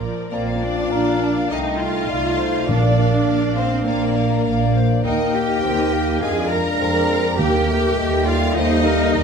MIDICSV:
0, 0, Header, 1, 11, 480
1, 0, Start_track
1, 0, Key_signature, -2, "major"
1, 0, Tempo, 593472
1, 255, Time_signature, 4, 2, 24, 8
1, 3604, Tempo, 585938
1, 7519, End_track
2, 0, Start_track
2, 0, Title_t, "Flute"
2, 0, Program_c, 0, 73
2, 255, Note_on_c, 0, 77, 44
2, 736, Note_on_c, 0, 82, 42
2, 749, Note_off_c, 0, 77, 0
2, 978, Note_off_c, 0, 82, 0
2, 983, Note_on_c, 0, 81, 36
2, 1037, Note_off_c, 0, 81, 0
2, 1226, Note_on_c, 0, 79, 41
2, 1698, Note_on_c, 0, 77, 39
2, 1711, Note_off_c, 0, 79, 0
2, 2168, Note_off_c, 0, 77, 0
2, 2173, Note_on_c, 0, 77, 46
2, 3576, Note_off_c, 0, 77, 0
2, 3606, Note_on_c, 0, 77, 45
2, 4079, Note_off_c, 0, 77, 0
2, 4088, Note_on_c, 0, 79, 49
2, 5049, Note_on_c, 0, 77, 47
2, 5061, Note_off_c, 0, 79, 0
2, 5782, Note_off_c, 0, 77, 0
2, 6005, Note_on_c, 0, 79, 52
2, 6455, Note_off_c, 0, 79, 0
2, 6484, Note_on_c, 0, 79, 50
2, 6968, Note_on_c, 0, 77, 53
2, 6980, Note_off_c, 0, 79, 0
2, 7438, Note_on_c, 0, 75, 55
2, 7451, Note_off_c, 0, 77, 0
2, 7519, Note_off_c, 0, 75, 0
2, 7519, End_track
3, 0, Start_track
3, 0, Title_t, "Violin section"
3, 0, Program_c, 1, 48
3, 6, Note_on_c, 1, 74, 29
3, 247, Note_off_c, 1, 74, 0
3, 257, Note_on_c, 1, 74, 37
3, 370, Note_off_c, 1, 74, 0
3, 378, Note_on_c, 1, 77, 35
3, 499, Note_off_c, 1, 77, 0
3, 507, Note_on_c, 1, 74, 30
3, 624, Note_off_c, 1, 74, 0
3, 628, Note_on_c, 1, 77, 35
3, 744, Note_off_c, 1, 77, 0
3, 747, Note_on_c, 1, 74, 35
3, 855, Note_off_c, 1, 74, 0
3, 869, Note_on_c, 1, 77, 34
3, 984, Note_off_c, 1, 77, 0
3, 992, Note_on_c, 1, 74, 40
3, 1106, Note_off_c, 1, 74, 0
3, 1112, Note_on_c, 1, 77, 36
3, 1222, Note_off_c, 1, 77, 0
3, 1232, Note_on_c, 1, 77, 43
3, 1338, Note_off_c, 1, 77, 0
3, 1359, Note_on_c, 1, 75, 36
3, 1469, Note_off_c, 1, 75, 0
3, 1471, Note_on_c, 1, 77, 34
3, 1584, Note_off_c, 1, 77, 0
3, 1588, Note_on_c, 1, 75, 32
3, 1702, Note_off_c, 1, 75, 0
3, 1707, Note_on_c, 1, 77, 40
3, 1813, Note_off_c, 1, 77, 0
3, 1824, Note_on_c, 1, 75, 37
3, 1939, Note_off_c, 1, 75, 0
3, 1942, Note_on_c, 1, 77, 33
3, 2058, Note_off_c, 1, 77, 0
3, 2062, Note_on_c, 1, 75, 36
3, 2177, Note_off_c, 1, 75, 0
3, 2184, Note_on_c, 1, 77, 38
3, 2290, Note_off_c, 1, 77, 0
3, 2299, Note_on_c, 1, 74, 38
3, 2414, Note_off_c, 1, 74, 0
3, 2423, Note_on_c, 1, 77, 34
3, 2535, Note_off_c, 1, 77, 0
3, 2539, Note_on_c, 1, 74, 38
3, 2653, Note_off_c, 1, 74, 0
3, 2661, Note_on_c, 1, 77, 41
3, 2765, Note_off_c, 1, 77, 0
3, 2777, Note_on_c, 1, 74, 36
3, 2885, Note_on_c, 1, 77, 42
3, 2891, Note_off_c, 1, 74, 0
3, 3005, Note_off_c, 1, 77, 0
3, 3008, Note_on_c, 1, 74, 38
3, 3126, Note_on_c, 1, 77, 45
3, 3127, Note_off_c, 1, 74, 0
3, 3238, Note_off_c, 1, 77, 0
3, 3253, Note_on_c, 1, 74, 37
3, 3366, Note_on_c, 1, 77, 35
3, 3369, Note_off_c, 1, 74, 0
3, 3481, Note_on_c, 1, 74, 37
3, 3486, Note_off_c, 1, 77, 0
3, 3602, Note_on_c, 1, 77, 40
3, 3603, Note_off_c, 1, 74, 0
3, 3716, Note_off_c, 1, 77, 0
3, 3722, Note_on_c, 1, 74, 37
3, 3845, Note_off_c, 1, 74, 0
3, 3848, Note_on_c, 1, 77, 37
3, 3965, Note_on_c, 1, 74, 38
3, 3968, Note_off_c, 1, 77, 0
3, 4087, Note_off_c, 1, 74, 0
3, 4091, Note_on_c, 1, 79, 37
3, 4201, Note_off_c, 1, 79, 0
3, 4208, Note_on_c, 1, 75, 40
3, 4327, Note_on_c, 1, 79, 36
3, 4329, Note_off_c, 1, 75, 0
3, 4448, Note_off_c, 1, 79, 0
3, 4448, Note_on_c, 1, 75, 42
3, 4563, Note_on_c, 1, 79, 40
3, 4569, Note_off_c, 1, 75, 0
3, 4677, Note_off_c, 1, 79, 0
3, 4689, Note_on_c, 1, 75, 38
3, 4807, Note_on_c, 1, 79, 43
3, 4808, Note_off_c, 1, 75, 0
3, 4927, Note_off_c, 1, 79, 0
3, 4927, Note_on_c, 1, 75, 41
3, 5046, Note_off_c, 1, 75, 0
3, 5053, Note_on_c, 1, 77, 44
3, 5161, Note_off_c, 1, 77, 0
3, 5173, Note_on_c, 1, 74, 40
3, 5289, Note_off_c, 1, 74, 0
3, 5293, Note_on_c, 1, 77, 42
3, 5408, Note_on_c, 1, 74, 37
3, 5409, Note_off_c, 1, 77, 0
3, 5526, Note_on_c, 1, 77, 43
3, 5527, Note_off_c, 1, 74, 0
3, 5638, Note_off_c, 1, 77, 0
3, 5652, Note_on_c, 1, 74, 41
3, 5769, Note_off_c, 1, 74, 0
3, 5775, Note_on_c, 1, 77, 42
3, 5891, Note_off_c, 1, 77, 0
3, 5896, Note_on_c, 1, 74, 46
3, 6012, Note_off_c, 1, 74, 0
3, 6013, Note_on_c, 1, 67, 49
3, 6122, Note_off_c, 1, 67, 0
3, 6135, Note_on_c, 1, 70, 47
3, 6251, Note_off_c, 1, 70, 0
3, 6258, Note_on_c, 1, 67, 43
3, 6373, Note_off_c, 1, 67, 0
3, 6378, Note_on_c, 1, 70, 42
3, 6493, Note_off_c, 1, 70, 0
3, 6500, Note_on_c, 1, 67, 47
3, 6607, Note_off_c, 1, 67, 0
3, 6615, Note_on_c, 1, 70, 45
3, 6733, Note_off_c, 1, 70, 0
3, 6735, Note_on_c, 1, 67, 51
3, 6853, Note_off_c, 1, 67, 0
3, 6857, Note_on_c, 1, 70, 52
3, 6973, Note_off_c, 1, 70, 0
3, 6977, Note_on_c, 1, 67, 55
3, 7084, Note_off_c, 1, 67, 0
3, 7099, Note_on_c, 1, 70, 48
3, 7213, Note_off_c, 1, 70, 0
3, 7213, Note_on_c, 1, 67, 49
3, 7329, Note_off_c, 1, 67, 0
3, 7332, Note_on_c, 1, 70, 47
3, 7449, Note_off_c, 1, 70, 0
3, 7456, Note_on_c, 1, 67, 54
3, 7519, Note_off_c, 1, 67, 0
3, 7519, End_track
4, 0, Start_track
4, 0, Title_t, "Violin section"
4, 0, Program_c, 2, 48
4, 255, Note_on_c, 2, 70, 41
4, 320, Note_off_c, 2, 70, 0
4, 495, Note_on_c, 2, 74, 56
4, 1204, Note_off_c, 2, 74, 0
4, 1220, Note_on_c, 2, 75, 50
4, 1284, Note_off_c, 2, 75, 0
4, 1455, Note_on_c, 2, 77, 53
4, 2157, Note_off_c, 2, 77, 0
4, 2169, Note_on_c, 2, 74, 49
4, 2884, Note_off_c, 2, 74, 0
4, 2890, Note_on_c, 2, 72, 52
4, 3123, Note_off_c, 2, 72, 0
4, 3133, Note_on_c, 2, 70, 51
4, 3836, Note_off_c, 2, 70, 0
4, 4094, Note_on_c, 2, 75, 52
4, 4315, Note_off_c, 2, 75, 0
4, 4334, Note_on_c, 2, 79, 66
4, 5049, Note_off_c, 2, 79, 0
4, 5053, Note_on_c, 2, 80, 55
4, 5284, Note_off_c, 2, 80, 0
4, 5289, Note_on_c, 2, 82, 60
4, 6009, Note_off_c, 2, 82, 0
4, 6010, Note_on_c, 2, 79, 62
4, 6731, Note_off_c, 2, 79, 0
4, 6736, Note_on_c, 2, 77, 69
4, 6973, Note_off_c, 2, 77, 0
4, 6977, Note_on_c, 2, 75, 68
4, 7519, Note_off_c, 2, 75, 0
4, 7519, End_track
5, 0, Start_track
5, 0, Title_t, "Clarinet"
5, 0, Program_c, 3, 71
5, 255, Note_on_c, 3, 74, 43
5, 739, Note_on_c, 3, 77, 41
5, 752, Note_off_c, 3, 74, 0
5, 1214, Note_off_c, 3, 77, 0
5, 1219, Note_on_c, 3, 75, 41
5, 1694, Note_on_c, 3, 74, 42
5, 1706, Note_off_c, 3, 75, 0
5, 1930, Note_on_c, 3, 72, 45
5, 1942, Note_off_c, 3, 74, 0
5, 2176, Note_on_c, 3, 70, 41
5, 2189, Note_off_c, 3, 72, 0
5, 3130, Note_on_c, 3, 74, 39
5, 3142, Note_off_c, 3, 70, 0
5, 3603, Note_off_c, 3, 74, 0
5, 3607, Note_on_c, 3, 74, 41
5, 3843, Note_off_c, 3, 74, 0
5, 3847, Note_on_c, 3, 72, 45
5, 4086, Note_on_c, 3, 70, 50
5, 4099, Note_off_c, 3, 72, 0
5, 5779, Note_off_c, 3, 70, 0
5, 6009, Note_on_c, 3, 70, 52
5, 6491, Note_on_c, 3, 75, 53
5, 6503, Note_off_c, 3, 70, 0
5, 6732, Note_on_c, 3, 74, 49
5, 6744, Note_off_c, 3, 75, 0
5, 6968, Note_off_c, 3, 74, 0
5, 6973, Note_on_c, 3, 72, 56
5, 7206, Note_on_c, 3, 70, 65
5, 7218, Note_off_c, 3, 72, 0
5, 7445, Note_off_c, 3, 70, 0
5, 7449, Note_on_c, 3, 70, 55
5, 7519, Note_off_c, 3, 70, 0
5, 7519, End_track
6, 0, Start_track
6, 0, Title_t, "Cello section"
6, 0, Program_c, 4, 48
6, 254, Note_on_c, 4, 58, 53
6, 481, Note_off_c, 4, 58, 0
6, 496, Note_on_c, 4, 62, 61
6, 1217, Note_on_c, 4, 63, 59
6, 1219, Note_off_c, 4, 62, 0
6, 1459, Note_off_c, 4, 63, 0
6, 1460, Note_on_c, 4, 65, 64
6, 2172, Note_on_c, 4, 62, 55
6, 2173, Note_off_c, 4, 65, 0
6, 2871, Note_off_c, 4, 62, 0
6, 2883, Note_on_c, 4, 60, 60
6, 3124, Note_off_c, 4, 60, 0
6, 3125, Note_on_c, 4, 58, 51
6, 3832, Note_off_c, 4, 58, 0
6, 4090, Note_on_c, 4, 63, 59
6, 4313, Note_off_c, 4, 63, 0
6, 4326, Note_on_c, 4, 67, 59
6, 5045, Note_off_c, 4, 67, 0
6, 5046, Note_on_c, 4, 68, 70
6, 5285, Note_off_c, 4, 68, 0
6, 5285, Note_on_c, 4, 70, 75
6, 5993, Note_off_c, 4, 70, 0
6, 6007, Note_on_c, 4, 67, 71
6, 6715, Note_off_c, 4, 67, 0
6, 6730, Note_on_c, 4, 65, 73
6, 6970, Note_off_c, 4, 65, 0
6, 6973, Note_on_c, 4, 63, 81
6, 7519, Note_off_c, 4, 63, 0
6, 7519, End_track
7, 0, Start_track
7, 0, Title_t, "Viola section"
7, 0, Program_c, 5, 48
7, 2, Note_on_c, 5, 53, 33
7, 3, Note_on_c, 5, 70, 35
7, 249, Note_off_c, 5, 53, 0
7, 249, Note_off_c, 5, 70, 0
7, 256, Note_on_c, 5, 58, 48
7, 482, Note_off_c, 5, 58, 0
7, 496, Note_on_c, 5, 62, 51
7, 1205, Note_off_c, 5, 62, 0
7, 1217, Note_on_c, 5, 63, 54
7, 1456, Note_on_c, 5, 65, 59
7, 1458, Note_off_c, 5, 63, 0
7, 2171, Note_off_c, 5, 65, 0
7, 2173, Note_on_c, 5, 62, 54
7, 2872, Note_off_c, 5, 62, 0
7, 2887, Note_on_c, 5, 60, 46
7, 3126, Note_off_c, 5, 60, 0
7, 3130, Note_on_c, 5, 58, 55
7, 3849, Note_off_c, 5, 58, 0
7, 4093, Note_on_c, 5, 63, 52
7, 4159, Note_off_c, 5, 63, 0
7, 4333, Note_on_c, 5, 67, 55
7, 5034, Note_off_c, 5, 67, 0
7, 5050, Note_on_c, 5, 68, 62
7, 5287, Note_off_c, 5, 68, 0
7, 5287, Note_on_c, 5, 70, 72
7, 5994, Note_off_c, 5, 70, 0
7, 6007, Note_on_c, 5, 67, 72
7, 6715, Note_off_c, 5, 67, 0
7, 6731, Note_on_c, 5, 65, 63
7, 6965, Note_off_c, 5, 65, 0
7, 6971, Note_on_c, 5, 63, 76
7, 7519, Note_off_c, 5, 63, 0
7, 7519, End_track
8, 0, Start_track
8, 0, Title_t, "Bassoon"
8, 0, Program_c, 6, 70
8, 258, Note_on_c, 6, 60, 36
8, 741, Note_on_c, 6, 58, 41
8, 753, Note_off_c, 6, 60, 0
8, 1218, Note_on_c, 6, 57, 41
8, 1230, Note_off_c, 6, 58, 0
8, 1692, Note_off_c, 6, 57, 0
8, 1697, Note_on_c, 6, 57, 38
8, 2176, Note_on_c, 6, 58, 43
8, 2188, Note_off_c, 6, 57, 0
8, 2407, Note_off_c, 6, 58, 0
8, 2412, Note_on_c, 6, 58, 42
8, 3127, Note_on_c, 6, 60, 49
8, 3139, Note_off_c, 6, 58, 0
8, 3368, Note_on_c, 6, 58, 38
8, 3380, Note_off_c, 6, 60, 0
8, 4086, Note_off_c, 6, 58, 0
8, 4091, Note_on_c, 6, 58, 44
8, 4572, Note_on_c, 6, 60, 53
8, 4584, Note_off_c, 6, 58, 0
8, 4812, Note_on_c, 6, 58, 50
8, 4824, Note_off_c, 6, 60, 0
8, 5053, Note_on_c, 6, 56, 49
8, 5066, Note_off_c, 6, 58, 0
8, 5361, Note_off_c, 6, 56, 0
8, 5529, Note_on_c, 6, 60, 54
8, 6011, Note_on_c, 6, 58, 51
8, 6023, Note_off_c, 6, 60, 0
8, 6251, Note_on_c, 6, 57, 53
8, 6263, Note_off_c, 6, 58, 0
8, 7455, Note_on_c, 6, 55, 55
8, 7467, Note_off_c, 6, 57, 0
8, 7519, Note_off_c, 6, 55, 0
8, 7519, End_track
9, 0, Start_track
9, 0, Title_t, "French horn section"
9, 0, Program_c, 7, 60
9, 257, Note_on_c, 7, 58, 44
9, 257, Note_on_c, 7, 65, 52
9, 1189, Note_off_c, 7, 58, 0
9, 1189, Note_off_c, 7, 65, 0
9, 1224, Note_on_c, 7, 57, 39
9, 1225, Note_on_c, 7, 63, 40
9, 2143, Note_off_c, 7, 57, 0
9, 2143, Note_off_c, 7, 63, 0
9, 2177, Note_on_c, 7, 62, 47
9, 2179, Note_on_c, 7, 58, 51
9, 4057, Note_off_c, 7, 62, 0
9, 4091, Note_on_c, 7, 63, 52
9, 5015, Note_off_c, 7, 63, 0
9, 5017, Note_off_c, 7, 58, 0
9, 5041, Note_on_c, 7, 56, 48
9, 5043, Note_on_c, 7, 62, 49
9, 5861, Note_off_c, 7, 56, 0
9, 5861, Note_off_c, 7, 62, 0
9, 6000, Note_on_c, 7, 55, 62
9, 6002, Note_on_c, 7, 58, 64
9, 7519, Note_off_c, 7, 55, 0
9, 7519, Note_off_c, 7, 58, 0
9, 7519, End_track
10, 0, Start_track
10, 0, Title_t, "Timpani"
10, 0, Program_c, 8, 47
10, 2173, Note_on_c, 8, 46, 55
10, 2853, Note_off_c, 8, 46, 0
10, 6007, Note_on_c, 8, 51, 59
10, 6697, Note_off_c, 8, 51, 0
10, 7519, End_track
11, 0, Start_track
11, 0, Title_t, "Double bass section"
11, 0, Program_c, 10, 48
11, 5, Note_on_c, 10, 34, 31
11, 70, Note_off_c, 10, 34, 0
11, 258, Note_on_c, 10, 34, 43
11, 684, Note_off_c, 10, 34, 0
11, 743, Note_on_c, 10, 34, 44
11, 1165, Note_off_c, 10, 34, 0
11, 1225, Note_on_c, 10, 36, 45
11, 1644, Note_off_c, 10, 36, 0
11, 1702, Note_on_c, 10, 36, 48
11, 2120, Note_off_c, 10, 36, 0
11, 2176, Note_on_c, 10, 34, 47
11, 2593, Note_off_c, 10, 34, 0
11, 2650, Note_on_c, 10, 34, 47
11, 3070, Note_off_c, 10, 34, 0
11, 3129, Note_on_c, 10, 34, 51
11, 3550, Note_off_c, 10, 34, 0
11, 3608, Note_on_c, 10, 34, 53
11, 4032, Note_off_c, 10, 34, 0
11, 4091, Note_on_c, 10, 39, 47
11, 4514, Note_off_c, 10, 39, 0
11, 4573, Note_on_c, 10, 39, 48
11, 4992, Note_off_c, 10, 39, 0
11, 5051, Note_on_c, 10, 41, 59
11, 5471, Note_off_c, 10, 41, 0
11, 5527, Note_on_c, 10, 41, 52
11, 5952, Note_off_c, 10, 41, 0
11, 6011, Note_on_c, 10, 39, 57
11, 6434, Note_off_c, 10, 39, 0
11, 6492, Note_on_c, 10, 39, 60
11, 6915, Note_off_c, 10, 39, 0
11, 6973, Note_on_c, 10, 39, 60
11, 7391, Note_off_c, 10, 39, 0
11, 7447, Note_on_c, 10, 39, 64
11, 7519, Note_off_c, 10, 39, 0
11, 7519, End_track
0, 0, End_of_file